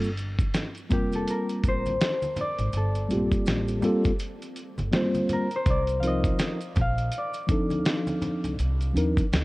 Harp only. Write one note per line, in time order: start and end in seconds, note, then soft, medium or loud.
0.93 3.28 G4 medium
1.15 1.36 A4 medium
1.30 2.83 A#4 medium
1.68 3.66 C5 medium
2.41 4.25 D5 loud
2.77 4.97 A4 medium
5.33 7.45 A#4 medium
5.56 7.54 C5 medium
5.70 5.78 D5 medium
6.00 6.81 F5 medium
6.07 7.24 D#5 loud
6.81 8.48 F5 loud
7.18 9.03 D5 medium